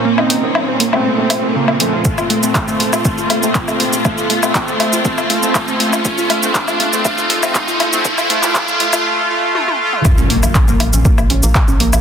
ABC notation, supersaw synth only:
X:1
M:4/4
L:1/16
Q:1/4=120
K:Bbm
V:1 name="Supersaw synth"
z [CE]2 z4 [=A,C]2 [A,C]2 z [D,B,]2 [F,A,]2 | [=A,F]2 z [A,C]2 [A,C]2 z [A,F]2 z [A,C]2 [A,C]2 z | [=A,F]2 z [A,C]2 [A,C]2 z [A,F]2 z [A,C]2 [A,C]2 z | [=A,F]2 z [A,C] [A,F]2 z [A,C] [A,F]2 z [A,C] [A,F]2 z [A,C] |
[=A,F]2 [A,F]2 [A,F]2 [A,F]2 [A,F]2 [A,F]2 [A,F]2 [A,F]2 | z16 |]